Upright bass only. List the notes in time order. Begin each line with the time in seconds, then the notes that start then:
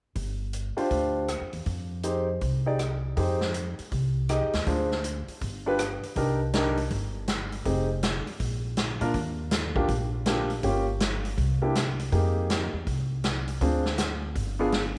0.15 G1
0.77 muted upright bass stroke
0.91 D2
1.41 F2
1.53 E2
1.66 F2
2.42 C2
3.17 F2
3.79 muted upright bass stroke
3.92 C2
4.54 D#2
4.66 D2
5.28 muted upright bass stroke
5.41 G1
6.03 muted upright bass stroke
6.16 C2
6.90 G1
7.65 F1
8.27 muted upright bass stroke
8.40 A#1
9.01 A#2
9.14 D#2
9.88 A#1
10.63 G1
11.37 C2
12.12 F2
12.73 E2
12.87 C2
13.61 D2
14.35 G1